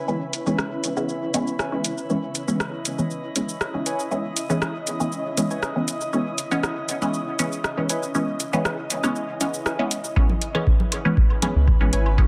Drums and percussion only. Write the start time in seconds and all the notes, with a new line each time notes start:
0.08 shaker
0.33 closed hi-hat, shaker
0.46 shaker
0.59 cross-stick, shaker
0.84 closed hi-hat, shaker
0.97 shaker
1.09 shaker
1.34 closed hi-hat, shaker
1.47 shaker
1.59 cross-stick, shaker
1.84 closed hi-hat, shaker
1.98 shaker
2.10 shaker
2.35 closed hi-hat, shaker
2.48 shaker
2.60 cross-stick, shaker
2.85 closed hi-hat, shaker
2.99 shaker
3.10 shaker
3.36 closed hi-hat, shaker
3.49 shaker
3.61 cross-stick, shaker
3.86 closed hi-hat, shaker
3.99 shaker
4.11 shaker
4.37 closed hi-hat, shaker
4.50 shaker
4.62 cross-stick, shaker
4.87 closed hi-hat, shaker
5.00 shaker
5.12 shaker
5.37 closed hi-hat, shaker
5.51 shaker
5.63 cross-stick, shaker
5.88 closed hi-hat, shaker
6.01 shaker
6.13 shaker
6.38 closed hi-hat, shaker
6.51 shaker
6.63 cross-stick, shaker
6.89 closed hi-hat, shaker
7.02 shaker
7.14 shaker
7.39 closed hi-hat, shaker
7.52 shaker
7.64 cross-stick, shaker
7.89 closed hi-hat, shaker
8.03 shaker
8.15 shaker
8.40 closed hi-hat, shaker
8.53 shaker
8.65 cross-stick, shaker
8.90 closed hi-hat, shaker
9.03 cross-stick, shaker
9.16 shaker
9.41 closed hi-hat, shaker
9.54 shaker
9.66 cross-stick, shaker
9.91 closed hi-hat, shaker
10.04 shaker
10.16 kick, low woodblock
10.30 low conga
10.42 closed hi-hat
10.55 low woodblock
10.67 kick
10.80 low conga
10.92 closed hi-hat, low woodblock
11.17 kick
11.30 low woodblock
11.42 closed hi-hat, low conga
11.68 kick, low woodblock
11.93 closed hi-hat
12.06 low woodblock
12.18 kick